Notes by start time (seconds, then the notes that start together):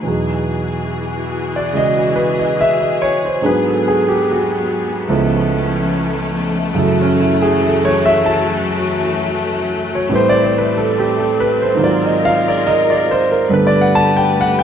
0.01 E2 B2 E3 F#3 F#4 G#4
0.07 D#4 G#4
1.56 D5
1.73 C#3 G#3 E4 G#4
1.77 D#5
1.96 F#4
2.16 B4
2.39 D#5
2.61 E5
2.80 D#5
3.02 C#5
3.25 C5
3.40 G#2 F#3 B3 D4 G#4
3.46 B4
3.68 A4
3.88 G#4
4.08 G4
4.31 F#4
5.07 C#2 C#3 F3 A3 B3 C#4 E4 A4
6.74 F#2 C#3 E3 F#3 A3 E4 F#4
6.79 A4
7.02 C#4
7.20 E4
7.42 G#4
7.62 A4
7.85 C#5
8.06 E5
8.26 A5
9.95 C#5
10.09 A2 E3 G3 C4
10.14 B4 C5
10.29 D5
10.44 C5
10.58 B4
10.77 A4
10.99 G4
11.19 A4
11.40 B4
11.62 C5
11.74 G#2 D#3 F4 G#4 A#4
11.79 F#3 C4
11.83 F4 A#4 D5
12.05 D#5
12.25 F5
12.48 D5
12.67 D#5
12.90 D5
13.11 C5
13.32 A#4
13.47 G2 D3 G3 A3 B3 G4 B4
13.51 A4 B4
13.67 D5
13.81 F#5
13.95 A5
14.17 G5
14.41 F#5
14.59 G5